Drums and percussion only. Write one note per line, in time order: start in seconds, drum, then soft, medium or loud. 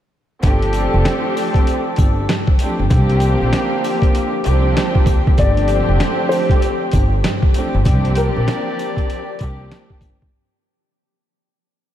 0.43 kick loud
0.43 closed hi-hat loud
0.43 sleigh bells medium
0.62 closed hi-hat medium
0.73 closed hi-hat medium
0.73 sleigh bells medium
1.05 snare loud
1.05 snare medium
1.05 closed hi-hat medium
1.05 sleigh bells soft
1.37 open hi-hat medium
1.37 sleigh bells medium
1.54 kick medium
1.54 closed hi-hat medium
1.67 closed hi-hat medium
1.67 sleigh bells medium
1.96 kick loud
1.96 closed hi-hat medium
1.96 sleigh bells medium
2.29 snare loud
2.29 snare medium
2.29 closed hi-hat medium
2.29 sleigh bells medium
2.47 kick medium
2.59 closed hi-hat medium
2.59 sleigh bells medium
2.90 kick loud
2.90 closed hi-hat loud
2.90 sleigh bells medium
3.10 closed hi-hat medium
3.20 closed hi-hat medium
3.20 sleigh bells medium
3.53 snare loud
3.53 snare medium
3.53 closed hi-hat medium
3.53 sleigh bells medium
3.84 open hi-hat medium
3.84 sleigh bells medium
4.02 kick medium
4.02 closed hi-hat medium
4.15 closed hi-hat medium
4.15 sleigh bells medium
4.44 closed hi-hat medium
4.44 sleigh bells medium
4.77 snare loud
4.77 closed hi-hat loud
4.77 sleigh bells medium
4.95 kick loud
5.06 kick loud
5.06 closed hi-hat medium
5.06 sleigh bells medium
5.27 kick loud
5.37 kick loud
5.37 closed hi-hat medium
5.37 sleigh bells medium
5.57 closed hi-hat medium
5.68 closed hi-hat medium
5.68 sleigh bells medium
6.00 snare loud
6.00 snare medium
6.00 closed hi-hat medium
6.00 sleigh bells medium
6.31 open hi-hat medium
6.31 sleigh bells medium
6.49 kick medium
6.49 closed hi-hat medium
6.62 closed hi-hat medium
6.62 sleigh bells medium
6.91 kick loud
6.91 closed hi-hat medium
6.91 sleigh bells medium
7.24 snare loud
7.24 closed hi-hat medium
7.24 sleigh bells medium
7.42 kick loud
7.54 closed hi-hat medium
7.54 sleigh bells medium
7.85 kick loud
7.85 closed hi-hat medium
7.85 sleigh bells medium
8.05 closed hi-hat medium
8.15 closed hi-hat medium
8.15 sleigh bells medium
8.48 snare loud
8.48 snare medium
8.48 closed hi-hat medium
8.48 sleigh bells soft
8.79 closed hi-hat medium
8.79 sleigh bells medium
8.97 kick loud
8.97 closed hi-hat medium
9.10 closed hi-hat medium
9.10 sleigh bells soft
9.39 kick loud
9.39 closed hi-hat medium
9.39 sleigh bells medium
9.72 snare loud
9.72 closed hi-hat loud
9.72 sleigh bells medium
9.90 kick medium
10.01 kick loud
10.01 closed hi-hat medium
10.01 sleigh bells medium
10.22 kick loud